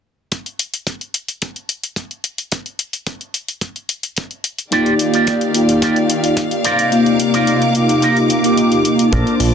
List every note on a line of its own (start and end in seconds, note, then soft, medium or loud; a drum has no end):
0.32 kick loud
0.32 closed hi-hat medium
0.46 closed hi-hat soft
0.59 closed hi-hat medium
0.74 closed hi-hat soft
0.87 kick loud
0.87 closed hi-hat soft
1.01 closed hi-hat soft
1.14 closed hi-hat medium
1.28 closed hi-hat soft
1.42 kick loud
1.42 closed hi-hat soft
1.56 closed hi-hat soft
1.69 closed hi-hat medium
1.83 closed hi-hat soft
1.96 kick loud
1.96 closed hi-hat soft
2.11 closed hi-hat soft
2.24 closed hi-hat medium
2.38 closed hi-hat soft
2.52 kick loud
2.52 closed hi-hat soft
2.66 closed hi-hat soft
2.79 closed hi-hat medium
2.93 closed hi-hat soft
3.07 kick loud
3.07 closed hi-hat soft
3.21 closed hi-hat soft
3.34 closed hi-hat medium
3.48 closed hi-hat soft
3.61 kick loud
3.61 closed hi-hat soft
3.76 closed hi-hat soft
3.89 closed hi-hat medium
4.03 closed hi-hat soft
4.17 kick loud
4.17 closed hi-hat soft
4.31 closed hi-hat soft
4.44 closed hi-hat medium
4.58 closed hi-hat soft
4.71 6.63 D#3 medium
4.71 5.51 A#3 medium
4.71 5.51 D#4 medium
4.71 4.93 D#4 loud
4.71 5.52 F4 medium
4.71 4.93 F4 medium
4.71 6.63 G4 medium
4.71 5.52 G4 medium
4.71 4.93 G4 medium
4.71 6.63 D5 medium
4.71 5.52 D5 medium
4.71 4.93 D5 loud
4.71 9.09 F5 medium
4.71 kick loud
4.71 closed hi-hat soft
4.86 closed hi-hat soft
4.99 closed hi-hat medium
5.14 5.42 D#4 medium
5.14 5.42 F4 medium
5.14 5.42 G4 medium
5.14 5.42 D5 medium
5.14 closed hi-hat soft
5.27 kick loud
5.27 closed hi-hat soft
5.41 closed hi-hat soft
5.54 6.63 A#3 medium
5.54 6.63 D#4 medium
5.54 6.63 F4 medium
5.54 6.64 G4 medium
5.54 6.64 D5 loud
5.54 closed hi-hat medium
5.69 muted clean electric guitar stroke medium
5.69 closed hi-hat soft
5.82 5.97 D#4 medium
5.82 5.97 F4 medium
5.82 5.97 G4 medium
5.82 5.97 D5 medium
5.82 kick loud
5.82 closed hi-hat soft
5.96 closed hi-hat soft
6.10 muted clean electric guitar stroke soft
6.10 closed hi-hat medium
6.24 closed hi-hat soft
6.37 kick loud
6.37 closed hi-hat soft
6.51 closed hi-hat soft
6.64 9.10 C3 medium
6.64 9.10 A#3 medium
6.64 9.10 D#4 medium
6.64 7.20 D#4 medium
6.64 7.20 F4 medium
6.64 7.20 A#4 medium
6.64 7.20 C5 medium
6.64 7.20 D5 loud
6.64 9.11 D6 medium
6.64 closed hi-hat medium
6.79 closed hi-hat soft
6.91 7.71 A#3 medium
6.91 7.72 D#4 medium
6.91 7.72 F4 medium
6.91 7.72 G4 medium
6.91 7.72 D5 medium
6.91 closed hi-hat soft
7.06 closed hi-hat soft
7.20 closed hi-hat medium
7.34 7.62 D#4 medium
7.34 7.62 F4 medium
7.34 7.62 A#4 medium
7.34 7.62 C5 medium
7.34 7.62 D5 medium
7.34 closed hi-hat soft
7.47 closed hi-hat soft
7.62 closed hi-hat soft
7.74 8.41 A#3 medium
7.74 8.41 D#4 medium
7.74 8.41 F4 medium
7.74 8.42 G4 medium
7.74 8.42 D6 medium
7.74 closed hi-hat medium
7.89 muted clean electric guitar stroke medium
7.89 closed hi-hat soft
8.02 8.17 D#4 medium
8.02 8.17 F4 medium
8.02 8.17 A#4 medium
8.02 8.17 C5 medium
8.02 8.17 D#5 medium
8.02 closed hi-hat soft
8.17 closed hi-hat soft
8.30 muted clean electric guitar stroke soft
8.30 closed hi-hat medium
8.43 9.09 A#3 medium
8.43 9.09 D#4 medium
8.43 9.09 F4 medium
8.43 9.10 G4 medium
8.43 9.10 D6 loud
8.43 closed hi-hat soft
8.57 closed hi-hat soft
8.72 closed hi-hat soft
8.85 closed hi-hat medium
8.99 closed hi-hat soft
9.12 9.25 A#1 medium
9.12 9.54 A#3 medium
9.12 9.54 D4 medium
9.12 9.54 F4 medium
9.12 9.33 A4 loud
9.12 9.34 A#4 loud
9.12 9.54 C5 medium
9.12 9.33 D5 loud
9.12 9.54 F5 medium
9.12 9.54 A5 medium
9.12 9.54 D6 medium
9.12 kick loud
9.12 closed hi-hat medium
9.27 closed hi-hat soft
9.40 9.52 A#1 medium
9.40 open hi-hat loud